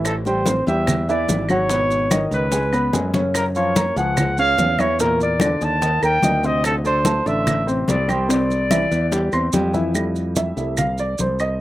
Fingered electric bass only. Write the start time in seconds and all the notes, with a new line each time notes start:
Already playing: A1
0.67 E2
1.28 G#1
2.31 C#2
2.93 F#2
3.96 C#2
4.58 E2
5.61 D#2
6.03 D#2
6.23 D2
7.26 A1
7.88 C2
8.91 E2
9.33 E2
9.53 F2
10.57 C2
11.19 C2